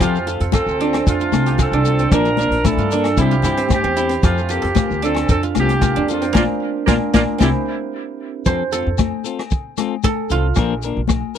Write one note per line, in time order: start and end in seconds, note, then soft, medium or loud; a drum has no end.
0.00 0.38 F2 loud
0.00 0.17 F3 medium
0.00 0.28 A3 medium
0.00 0.94 C4 medium
0.00 0.17 C4 medium
0.00 0.80 D4 medium
0.00 0.33 E4 medium
0.00 0.27 F4 medium
0.00 0.18 F4 medium
0.00 1.46 G4 medium
0.00 0.18 A4 medium
0.00 kick medium
0.00 cross-stick medium
0.00 closed hi-hat medium
0.00 muted conga soft
0.00 low agogo medium
0.00 shekere medium
0.16 shekere soft
0.27 0.53 F4 medium
0.27 0.44 F4 soft
0.27 0.43 A4 medium
0.27 closed hi-hat soft
0.27 shekere medium
0.40 0.65 F2 medium
0.40 1.07 A4 medium
0.40 closed hi-hat soft
0.52 1.03 C4 medium
0.52 1.21 F4 medium
0.52 1.03 A4 medium
0.52 kick medium
0.52 cross-stick medium
0.52 closed hi-hat soft
0.52 high conga medium
0.52 low agogo medium
0.52 shekere medium
0.66 1.03 D2 medium
0.66 shekere soft
0.79 0.97 C4 soft
0.79 1.73 D4 medium
0.79 0.97 F4 soft
0.79 0.96 A4 medium
0.79 closed hi-hat soft
0.79 muted conga soft
0.93 1.99 C4 medium
0.93 cross-stick medium
0.93 closed hi-hat soft
0.93 low agogo medium
1.06 1.31 F2 medium
1.06 1.60 A3 medium
1.06 1.60 F4 medium
1.06 3.27 A4 medium
1.06 kick medium
1.06 closed hi-hat soft
1.06 muted conga soft
1.06 shekere medium
1.20 1.59 F4 medium
1.20 shekere soft
1.32 1.70 C2 medium
1.32 1.50 C4 soft
1.32 1.49 F4 soft
1.32 1.49 A4 medium
1.32 cross-stick medium
1.32 closed hi-hat soft
1.32 muted conga soft
1.32 high conga medium
1.32 low agogo medium
1.32 shekere medium
1.46 3.82 G4 medium
1.46 closed hi-hat soft
1.46 shekere soft
1.58 2.13 C4 medium
1.58 2.25 F4 medium
1.58 2.12 A4 loud
1.58 kick medium
1.58 cross-stick medium
1.58 closed hi-hat soft
1.58 high conga medium
1.58 low agogo medium
1.58 shekere medium
1.72 2.09 C2 medium
1.72 2.12 D4 medium
1.85 2.03 C4 soft
1.85 2.03 F4 medium
1.85 2.02 A4 medium
1.85 closed hi-hat soft
1.85 shekere medium
1.99 3.57 C4 medium
1.99 closed hi-hat soft
1.99 shekere soft
2.12 2.49 A#1 loud
2.12 2.28 F3 medium
2.12 2.28 A#3 medium
2.12 2.38 D4 medium
2.12 2.65 D4 medium
2.12 2.29 D4 medium
2.12 2.65 A#4 loud
2.12 2.29 A#4 medium
2.12 kick medium
2.12 cross-stick medium
2.12 closed hi-hat soft
2.12 low agogo medium
2.12 shekere medium
2.25 2.72 F4 medium
2.25 shekere soft
2.37 2.56 A#3 soft
2.37 2.92 D4 medium
2.37 2.55 D4 soft
2.37 2.55 A#4 medium
2.37 closed hi-hat soft
2.37 high conga medium
2.37 shekere medium
2.50 2.76 A#1 medium
2.50 closed hi-hat soft
2.64 3.18 D4 medium
2.64 2.84 E4 medium
2.64 3.18 A4 loud
2.64 kick medium
2.64 cross-stick medium
2.64 closed hi-hat soft
2.64 high conga medium
2.64 low agogo medium
2.64 shekere loud
2.77 3.14 G2 medium
2.77 3.24 F4 medium
2.77 shekere soft
2.91 3.09 A#3 soft
2.91 5.02 D4 medium
2.91 3.09 D4 medium
2.91 3.08 A#4 medium
2.91 closed hi-hat soft
2.91 shekere medium
3.04 cross-stick medium
3.04 closed hi-hat medium
3.04 low agogo medium
3.16 3.42 C2 loud
3.16 3.34 G3 medium
3.16 3.34 C4 medium
3.16 3.37 E4 medium
3.16 3.35 E4 medium
3.16 kick medium
3.16 closed hi-hat soft
3.16 muted conga soft
3.16 shekere medium
3.20 3.72 C4 medium
3.20 3.35 G4 medium
3.20 3.72 G4 medium
3.31 3.50 F4 medium
3.31 shekere soft
3.42 3.81 G2 medium
3.42 3.61 C4 soft
3.42 3.96 E4 medium
3.42 3.60 E4 soft
3.42 3.60 G4 medium
3.42 cross-stick medium
3.42 closed hi-hat medium
3.42 muted conga soft
3.42 low conga medium
3.42 low agogo medium
3.42 shekere medium
3.57 3.84 C4 medium
3.57 closed hi-hat soft
3.57 shekere soft
3.69 kick medium
3.69 cross-stick medium
3.69 closed hi-hat soft
3.69 high conga medium
3.69 low agogo medium
3.69 shekere medium
3.73 4.21 C4 medium
3.73 4.21 G4 loud
3.84 4.20 E2 medium
3.84 4.09 C4 medium
3.97 4.14 C4 soft
3.97 4.55 E4 medium
3.97 4.14 E4 soft
3.97 4.13 G4 medium
3.97 closed hi-hat soft
3.97 shekere medium
4.09 6.21 C4 medium
4.09 closed hi-hat medium
4.09 shekere soft
4.21 4.61 F2 loud
4.21 4.39 F3 medium
4.21 4.48 A3 medium
4.21 4.47 F4 medium
4.21 4.40 F4 medium
4.21 5.70 G4 medium
4.21 4.40 A4 medium
4.21 muted clean electric guitar stroke medium
4.21 kick medium
4.21 cross-stick medium
4.21 closed hi-hat medium
4.21 muted conga soft
4.21 low agogo medium
4.21 shekere medium
4.38 shekere soft
4.49 5.02 A#3 medium
4.49 4.74 F4 medium
4.49 5.02 G4 medium
4.49 4.66 A4 medium
4.49 closed hi-hat soft
4.49 shekere medium
4.53 4.67 C4 soft
4.53 4.67 F4 soft
4.62 4.88 F2 medium
4.62 5.29 A4 medium
4.62 closed hi-hat soft
4.75 5.43 F4 medium
4.75 kick medium
4.75 cross-stick medium
4.75 closed hi-hat soft
4.75 high conga medium
4.75 low agogo medium
4.75 shekere loud
4.90 5.26 D2 medium
4.90 shekere soft
5.02 5.28 C4 medium
5.02 5.20 C4 soft
5.02 5.96 D4 medium
5.02 5.20 F4 soft
5.02 5.27 A4 medium
5.02 5.19 A4 medium
5.02 closed hi-hat soft
5.02 muted conga soft
5.02 shekere medium
5.15 cross-stick medium
5.15 closed hi-hat soft
5.15 low agogo medium
5.29 5.54 F2 medium
5.29 5.41 C4 medium
5.29 6.39 A4 medium
5.29 5.42 A4 medium
5.29 kick medium
5.29 closed hi-hat soft
5.29 muted conga soft
5.29 shekere medium
5.43 5.82 F4 medium
5.43 shekere soft
5.55 5.93 C2 medium
5.55 6.05 A#3 medium
5.55 5.73 C4 soft
5.55 5.72 F4 medium
5.55 5.71 A4 soft
5.55 cross-stick medium
5.55 closed hi-hat soft
5.55 muted conga soft
5.55 high conga medium
5.55 low agogo medium
5.55 shekere medium
5.59 6.06 G4 medium
5.69 7.43 G4 medium
5.69 closed hi-hat soft
5.69 shekere soft
5.81 6.37 F4 medium
5.81 kick medium
5.81 cross-stick medium
5.81 closed hi-hat soft
5.81 high conga medium
5.81 low agogo medium
5.81 shekere medium
5.96 6.32 F2 medium
5.96 6.34 D4 medium
6.08 6.34 A#3 medium
6.08 6.26 C4 soft
6.08 6.25 F4 soft
6.08 6.24 A4 medium
6.08 closed hi-hat soft
6.08 shekere medium
6.12 6.33 F4 medium
6.22 7.38 C4 medium
6.22 closed hi-hat soft
6.22 shekere soft
6.33 6.45 A#1 medium
6.33 6.88 A#3 medium
6.33 6.41 A#3 medium
6.33 6.44 A#3 medium
6.33 6.87 D4 medium
6.33 6.42 D4 medium
6.33 6.44 D4 medium
6.33 6.41 F4 loud
6.33 6.44 F4 medium
6.33 kick medium
6.33 snare medium
6.33 high conga loud
6.33 low agogo loud
6.33 shekere medium
6.37 6.88 F4 medium
6.87 6.98 A#1 loud
6.87 6.93 A#3 loud
6.87 7.13 A#3 medium
6.87 6.97 A#3 medium
6.87 6.93 D4 loud
6.87 7.14 D4 medium
6.87 6.97 D4 medium
6.87 6.93 F4 medium
6.87 7.14 F4 medium
6.87 6.97 F4 medium
6.87 kick medium
6.87 snare medium
6.87 high conga loud
6.87 low agogo loud
6.87 shekere loud
7.14 7.24 A#1 medium
7.14 8.78 A#3 loud
7.14 7.22 A#3 loud
7.14 7.20 A#3 loud
7.14 9.94 D4 loud
7.14 7.23 D4 loud
7.14 7.21 D4 loud
7.14 7.47 F4 loud
7.14 7.21 F4 loud
7.14 7.23 F4 medium
7.14 kick medium
7.14 snare medium
7.14 high conga loud
7.14 low agogo loud
7.14 shekere medium
7.38 7.50 C2 loud
7.38 7.48 G3 loud
7.38 10.38 C4 medium
7.38 7.49 C4 loud
7.38 7.48 C4 medium
7.38 7.49 E4 loud
7.38 10.02 E4 medium
7.38 7.48 E4 medium
7.38 7.49 G4 medium
7.38 kick medium
7.38 snare medium
7.38 high conga medium
7.38 low agogo medium
7.38 shekere medium
7.43 9.78 G4 medium
8.46 8.83 F2 medium
8.46 8.62 F3 medium
8.46 8.62 C4 medium
8.46 8.62 A4 medium
8.46 10.44 C5 medium
8.46 muted clean electric guitar stroke medium
8.46 kick medium
8.46 cross-stick medium
8.46 muted conga soft
8.46 low agogo medium
8.46 shekere medium
8.72 8.89 C4 soft
8.72 8.89 F4 soft
8.72 8.88 A4 soft
8.72 10.04 A4 medium
8.72 closed hi-hat soft
8.72 shekere medium
8.87 9.11 F2 medium
8.98 kick medium
8.98 cross-stick medium
8.98 high conga medium
8.98 low agogo medium
8.98 shekere loud
9.24 9.42 C4 soft
9.24 9.41 F4 soft
9.24 9.41 A4 soft
9.24 closed hi-hat soft
9.24 shekere medium
9.39 cross-stick medium
9.39 low agogo medium
9.51 kick medium
9.51 muted conga soft
9.51 shekere medium
9.78 9.95 C4 soft
9.78 9.95 F4 medium
9.78 9.94 A4 medium
9.78 cross-stick medium
9.78 closed hi-hat soft
9.78 muted conga soft
9.78 high conga medium
9.78 low agogo medium
9.78 shekere medium
10.04 11.38 A4 medium
10.04 kick medium
10.04 cross-stick medium
10.04 high conga medium
10.04 low agogo medium
10.04 shekere medium
10.30 10.55 C2 medium
10.30 10.48 C4 soft
10.30 11.38 F4 medium
10.30 10.47 F4 soft
10.30 10.46 A4 medium
10.30 closed hi-hat soft
10.30 muted conga soft
10.30 shekere medium
10.55 10.94 A#1 medium
10.55 10.73 F3 medium
10.55 10.73 A#3 medium
10.55 10.74 D4 medium
10.55 10.74 A#4 medium
10.55 kick medium
10.55 cross-stick medium
10.55 low agogo medium
10.55 shekere medium
10.82 11.01 D4 soft
10.82 11.00 A#4 soft
10.82 closed hi-hat soft
10.82 shekere medium
10.87 11.01 A#3 soft
10.97 11.21 A#1 medium
11.07 kick medium
11.07 cross-stick medium
11.07 high conga medium
11.07 low agogo medium
11.07 shekere medium